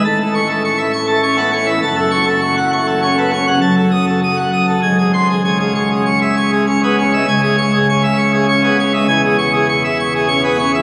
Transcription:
<<
  \new Staff \with { instrumentName = "Pipe organ" } { \time 3/4 \key cis \minor \tempo 4 = 100 a''16 a'16 cis'''16 a'16 cis'''16 e''16 cis'''16 a'16 cis'''16 a'16 cis'''16 e''16 | a''16 a'16 cis'''16 a'16 cis'''16 fis''16 cis'''16 a'16 cis'''16 a'16 cis'''16 fis''16 | a''16 a'16 dis'''16 a'16 dis'''16 fis''16 dis'''16 a'16 gis''16 gis'16 bis''16 gis'16 | gis''16 gis'16 cis'''16 gis'16 cis'''16 e''16 cis'''16 gis'16 cis'''16 gis'16 cis'''16 e''16 |
gis''16 gis'16 cis'''16 gis'16 cis'''16 e''16 cis'''16 gis'16 cis'''16 gis'16 cis'''16 e''16 | gis''16 gis'16 cis'''16 gis'16 cis'''16 e''16 cis'''16 gis'16 cis'''16 gis'16 cis'''16 e''16 | }
  \new Staff \with { instrumentName = "Pipe organ" } { \clef bass \time 3/4 \key cis \minor << { a,2 cis'16 b16 cis'16 e16 | fis,2 cis'16 b16 cis'16 cis16 | fis,2 gis,4 | cis2 cis'16 b16 cis'16 gis16 |
cis2 cis'16 b16 cis'16 gis16 | e,2 cis'16 b16 cis'16 e16 | } \\ { a,,2. | fis,,2. | fis,,2 gis,,4 | cis,2. |
cis,2. | e,,2. | } >> }
>>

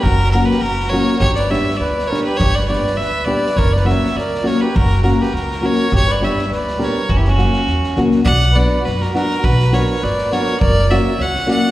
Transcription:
<<
  \new Staff \with { instrumentName = "Fiddle" } { \time 2/4 \tempo 4 = 102 ais'8 ais'16 b'16 ais'8 cis''8 | cis''16 d''16 e''8 d''8 cis''16 b'16 | cis''16 d''16 d''8 e''8 d''8 | cis''16 d''16 e''8 d''8 cis''16 b'16 |
ais'8 ais'16 b'16 ais'8 cis''8 | cis''16 d''16 e''8 d''8 cis''8 | fis'32 g'32 fis'4~ fis'16 r8 | fis''8 d''8 b'16 ais'16 ais'8 |
b'8 cis''8 d''8 cis''8 | d''8 e''8 fis''8 fis''8 | }
  \new Staff \with { instrumentName = "Accordion" } { \time 2/4 fis'8 fis'16 g'16 fis'8 ais'8 | g'16 b'16 cis''8 b'8 ais'16 g'16 | g'16 b'16 b'8 b'8 b'8 | ais'16 b'16 cis''8 ais'8 ais'16 g'16 |
fis'8 fis'16 g'16 fis'8 ais'8 | g'16 b'16 cis''8 b'8 ais'8 | cis'32 e'32 cis'4~ cis'16 r8 | d''8 b'8 fis'16 fis'16 fis'8 |
fis'8 ais'8 b'8 ais'8 | ais'8 cis''8 cis''8 d''8 | }
  \new Staff \with { instrumentName = "Nylon-string guitar" } { \time 2/4 r8 <fis ais cis' fis'>8 r8 <fis ais cis' fis'>8 | r8 <g b d' g'>8 r8 <g b d' g'>8 | r8 <g b d' g'>8 r8 <g b d' g'>8 | r8 <fis ais cis' fis'>8 r8 <fis ais cis' fis'>8 |
r8 <fis ais cis' fis'>8 r8 <fis ais cis' fis'>8 | r8 <g b d' g'>8 r8 <g b d' g'>8 | r8 <fis ais cis' fis'>8 r8 <fis ais cis' fis'>8 | r8 <fis b d' fis'>8 r8 <fis b d' fis'>8 |
r8 <fis b d' fis'>8 r8 <fis b d' fis'>8 | r8 <fis ais cis' fis'>8 r8 <fis ais cis' fis'>8 | }
  \new Staff \with { instrumentName = "Upright bass" } { \clef bass \time 2/4 fis,,4 fis,,4 | g,,4 d,4 | g,,4 d,4 | fis,,4 cis,4 |
fis,,4 cis,4 | g,,4 d,4 | fis,,4 e,8 cis,8 | b,,4 fis,8 r8 |
b,,4 g,,8 r8 | fis,,4 cis,8 r8 | }
  \new DrumStaff \with { instrumentName = "Drums" } \drummode { \time 2/4 bd16 sn16 sn16 sn16 sn16 sn16 sn8 | bd16 sn16 sn16 sn16 sn16 sn16 sn8 | bd16 sn16 sn16 sn16 sn8. sn16 | bd16 sn16 sn16 sn16 sn16 sn16 sn8 |
bd16 sn16 sn16 sn16 sn16 sn8. | bd16 sn16 sn16 sn16 sn16 sn16 sn8 | bd16 sn16 sn16 sn16 sn16 sn16 sn16 sn16 | bd16 sn16 sn8 sn16 sn16 sn16 sn16 |
bd16 sn16 sn8 sn16 sn16 sn16 sn16 | bd16 sn16 sn8 sn16 sn16 sn8 | }
>>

